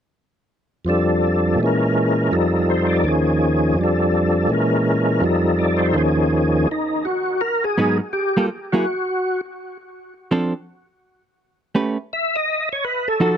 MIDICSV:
0, 0, Header, 1, 3, 480
1, 0, Start_track
1, 0, Tempo, 362757
1, 1151, Time_signature, 4, 2, 24, 8
1, 17695, End_track
2, 0, Start_track
2, 0, Title_t, "Hollow-body jazz guitar"
2, 0, Program_c, 0, 26
2, 10289, Note_on_c, 0, 44, 55
2, 10295, Note_on_c, 0, 59, 52
2, 10297, Note_on_c, 0, 54, 51
2, 10309, Note_on_c, 0, 63, 59
2, 10565, Note_off_c, 0, 44, 0
2, 10568, Note_off_c, 0, 59, 0
2, 10569, Note_off_c, 0, 54, 0
2, 10575, Note_off_c, 0, 63, 0
2, 11072, Note_on_c, 0, 55, 55
2, 11079, Note_on_c, 0, 58, 64
2, 11082, Note_on_c, 0, 65, 57
2, 11085, Note_on_c, 0, 69, 58
2, 11220, Note_off_c, 0, 55, 0
2, 11224, Note_off_c, 0, 58, 0
2, 11225, Note_off_c, 0, 65, 0
2, 11226, Note_off_c, 0, 69, 0
2, 11552, Note_on_c, 0, 54, 50
2, 11561, Note_on_c, 0, 58, 61
2, 11568, Note_on_c, 0, 64, 59
2, 11577, Note_on_c, 0, 68, 58
2, 11700, Note_off_c, 0, 54, 0
2, 11704, Note_off_c, 0, 58, 0
2, 11708, Note_off_c, 0, 64, 0
2, 11712, Note_off_c, 0, 68, 0
2, 13646, Note_on_c, 0, 53, 62
2, 13649, Note_on_c, 0, 60, 63
2, 13658, Note_on_c, 0, 62, 57
2, 13661, Note_on_c, 0, 69, 70
2, 13922, Note_off_c, 0, 53, 0
2, 13923, Note_off_c, 0, 60, 0
2, 13928, Note_off_c, 0, 62, 0
2, 13929, Note_off_c, 0, 69, 0
2, 15546, Note_on_c, 0, 57, 59
2, 15552, Note_on_c, 0, 67, 57
2, 15554, Note_on_c, 0, 61, 56
2, 15558, Note_on_c, 0, 71, 61
2, 15830, Note_off_c, 0, 57, 0
2, 15833, Note_off_c, 0, 67, 0
2, 15834, Note_off_c, 0, 61, 0
2, 15836, Note_off_c, 0, 71, 0
2, 17468, Note_on_c, 0, 53, 52
2, 17475, Note_on_c, 0, 63, 53
2, 17481, Note_on_c, 0, 66, 65
2, 17491, Note_on_c, 0, 69, 54
2, 17695, Note_off_c, 0, 53, 0
2, 17695, Note_off_c, 0, 63, 0
2, 17695, Note_off_c, 0, 66, 0
2, 17695, Note_off_c, 0, 69, 0
2, 17695, End_track
3, 0, Start_track
3, 0, Title_t, "Tonewheel organ"
3, 0, Program_c, 1, 16
3, 1120, Note_on_c, 1, 41, 41
3, 1141, Note_on_c, 1, 53, 38
3, 1162, Note_on_c, 1, 55, 39
3, 1175, Note_on_c, 1, 62, 37
3, 1185, Note_on_c, 1, 69, 47
3, 2053, Note_on_c, 1, 46, 46
3, 2095, Note_on_c, 1, 52, 43
3, 2097, Note_off_c, 1, 41, 0
3, 2108, Note_off_c, 1, 53, 0
3, 2118, Note_off_c, 1, 55, 0
3, 2123, Note_on_c, 1, 56, 43
3, 2125, Note_off_c, 1, 62, 0
3, 2130, Note_off_c, 1, 69, 0
3, 2156, Note_on_c, 1, 61, 46
3, 2195, Note_on_c, 1, 70, 52
3, 3044, Note_off_c, 1, 46, 0
3, 3065, Note_off_c, 1, 52, 0
3, 3066, Note_on_c, 1, 41, 47
3, 3075, Note_on_c, 1, 53, 41
3, 3079, Note_off_c, 1, 56, 0
3, 3083, Note_on_c, 1, 63, 45
3, 3084, Note_on_c, 1, 55, 42
3, 3085, Note_on_c, 1, 69, 51
3, 3096, Note_off_c, 1, 61, 0
3, 3115, Note_off_c, 1, 70, 0
3, 3570, Note_on_c, 1, 72, 38
3, 3795, Note_on_c, 1, 74, 45
3, 3933, Note_off_c, 1, 72, 0
3, 4009, Note_on_c, 1, 39, 46
3, 4021, Note_off_c, 1, 53, 0
3, 4023, Note_on_c, 1, 51, 44
3, 4031, Note_off_c, 1, 41, 0
3, 4037, Note_on_c, 1, 53, 42
3, 4040, Note_off_c, 1, 55, 0
3, 4040, Note_off_c, 1, 63, 0
3, 4041, Note_off_c, 1, 69, 0
3, 4056, Note_on_c, 1, 61, 43
3, 4078, Note_on_c, 1, 68, 52
3, 4130, Note_off_c, 1, 74, 0
3, 4926, Note_on_c, 1, 41, 50
3, 4951, Note_off_c, 1, 53, 0
3, 4967, Note_on_c, 1, 53, 43
3, 4983, Note_off_c, 1, 39, 0
3, 4990, Note_off_c, 1, 51, 0
3, 4999, Note_on_c, 1, 55, 46
3, 5007, Note_off_c, 1, 61, 0
3, 5017, Note_off_c, 1, 68, 0
3, 5042, Note_on_c, 1, 62, 42
3, 5075, Note_on_c, 1, 69, 48
3, 5922, Note_off_c, 1, 41, 0
3, 5930, Note_on_c, 1, 46, 44
3, 5942, Note_off_c, 1, 53, 0
3, 5947, Note_on_c, 1, 52, 46
3, 5958, Note_off_c, 1, 55, 0
3, 5961, Note_on_c, 1, 56, 43
3, 5980, Note_off_c, 1, 62, 0
3, 5983, Note_on_c, 1, 61, 43
3, 5996, Note_off_c, 1, 69, 0
3, 6000, Note_on_c, 1, 70, 50
3, 6886, Note_on_c, 1, 41, 50
3, 6902, Note_on_c, 1, 53, 46
3, 6904, Note_off_c, 1, 46, 0
3, 6912, Note_off_c, 1, 52, 0
3, 6919, Note_off_c, 1, 56, 0
3, 6922, Note_on_c, 1, 55, 49
3, 6930, Note_off_c, 1, 61, 0
3, 6934, Note_on_c, 1, 63, 49
3, 6939, Note_off_c, 1, 70, 0
3, 6952, Note_on_c, 1, 69, 60
3, 7392, Note_on_c, 1, 74, 41
3, 7634, Note_on_c, 1, 72, 41
3, 7764, Note_off_c, 1, 74, 0
3, 7846, Note_on_c, 1, 39, 59
3, 7860, Note_off_c, 1, 53, 0
3, 7862, Note_off_c, 1, 41, 0
3, 7863, Note_on_c, 1, 51, 46
3, 7876, Note_on_c, 1, 53, 54
3, 7880, Note_off_c, 1, 55, 0
3, 7885, Note_off_c, 1, 63, 0
3, 7891, Note_on_c, 1, 61, 51
3, 7895, Note_off_c, 1, 69, 0
3, 7914, Note_on_c, 1, 68, 58
3, 7970, Note_off_c, 1, 72, 0
3, 8821, Note_off_c, 1, 39, 0
3, 8830, Note_off_c, 1, 51, 0
3, 8837, Note_off_c, 1, 53, 0
3, 8844, Note_off_c, 1, 61, 0
3, 8855, Note_off_c, 1, 68, 0
3, 8883, Note_on_c, 1, 63, 75
3, 9330, Note_on_c, 1, 66, 70
3, 9354, Note_off_c, 1, 63, 0
3, 9804, Note_on_c, 1, 70, 87
3, 9817, Note_off_c, 1, 66, 0
3, 10111, Note_on_c, 1, 68, 93
3, 10123, Note_off_c, 1, 70, 0
3, 10557, Note_off_c, 1, 68, 0
3, 10757, Note_on_c, 1, 67, 85
3, 11202, Note_off_c, 1, 67, 0
3, 11544, Note_on_c, 1, 66, 73
3, 12453, Note_off_c, 1, 66, 0
3, 16050, Note_on_c, 1, 76, 93
3, 16350, Note_on_c, 1, 75, 92
3, 16363, Note_off_c, 1, 76, 0
3, 16792, Note_off_c, 1, 75, 0
3, 16838, Note_on_c, 1, 73, 83
3, 16996, Note_on_c, 1, 71, 75
3, 17001, Note_off_c, 1, 73, 0
3, 17307, Note_on_c, 1, 69, 90
3, 17315, Note_off_c, 1, 71, 0
3, 17695, Note_off_c, 1, 69, 0
3, 17695, End_track
0, 0, End_of_file